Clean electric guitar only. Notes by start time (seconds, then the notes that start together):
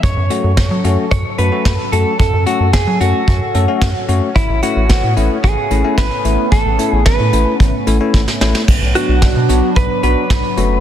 0.03 C#5
1.11 C#5
1.38 B4
1.92 A4
2.19 A4
2.46 F#4
2.73 G#4
3.01 F#4
4.36 E4
4.63 F#4
5.44 G#4
5.98 B4
6.52 A4
6.93 G#4
7.06 B4
8.95 F#4
9.77 B4
10.03 B4